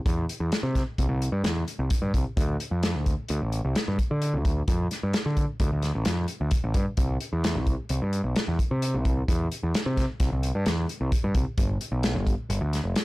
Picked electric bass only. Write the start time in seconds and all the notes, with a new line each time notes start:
0.06 E2
0.40 E2
0.63 C3
0.99 C2
1.09 C2
1.32 G2
1.44 E2
1.79 C2
2.02 G2
2.14 C2
2.37 D2
2.71 F2
2.95 D2
3.30 D2
3.42 A1
3.65 C2
3.88 G2
4.11 D3
4.34 D2
4.68 F2
5.03 G2
5.26 D3
5.60 D2
5.72 D2
5.95 A1
6.07 F2
6.41 D2
6.64 A1
6.75 G2
6.97 C2
7.33 E2
7.55 C2
7.90 C2
8.02 G2
8.24 B1
8.48 E2
8.71 C3
8.94 C2
9.28 E2
9.63 E2
9.86 C3
10.20 C2
10.32 C2
10.55 G2
10.66 E2
11.01 C2
11.24 G2
11.35 C2
11.58 G1
11.92 B1
12.14 G1
12.50 G1
12.61 D2
12.84 F1